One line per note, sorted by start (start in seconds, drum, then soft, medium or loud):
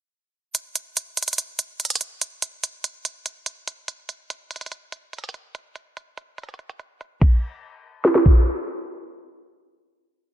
0.55 closed hi-hat medium
0.76 closed hi-hat medium
0.97 closed hi-hat medium
1.17 closed hi-hat medium
1.23 closed hi-hat medium
1.28 closed hi-hat medium
1.33 closed hi-hat medium
1.38 closed hi-hat medium
1.59 closed hi-hat medium
1.80 closed hi-hat soft
1.85 closed hi-hat medium
1.90 closed hi-hat medium
1.95 closed hi-hat medium
2.01 closed hi-hat medium
2.21 closed hi-hat medium
2.42 closed hi-hat medium
2.64 closed hi-hat medium
2.84 closed hi-hat medium
3.05 closed hi-hat medium
3.26 closed hi-hat medium
3.46 closed hi-hat medium
3.68 closed hi-hat medium
3.88 closed hi-hat medium
4.09 closed hi-hat medium
4.30 closed hi-hat medium
4.51 closed hi-hat medium
4.56 closed hi-hat medium
4.61 closed hi-hat medium
4.66 closed hi-hat medium
4.72 closed hi-hat medium
4.92 closed hi-hat medium
5.13 closed hi-hat medium
5.18 closed hi-hat medium
5.24 closed hi-hat medium
5.29 closed hi-hat medium
5.34 closed hi-hat medium
5.55 closed hi-hat medium
5.76 closed hi-hat medium
5.97 closed hi-hat medium
6.17 closed hi-hat medium
6.38 closed hi-hat medium
6.43 closed hi-hat medium
6.49 closed hi-hat medium
6.54 closed hi-hat soft
6.59 closed hi-hat soft
6.69 closed hi-hat medium
6.79 closed hi-hat medium
7.01 closed hi-hat medium
7.21 kick loud
7.21 crash medium
8.05 snare medium
8.15 snare medium
8.26 kick medium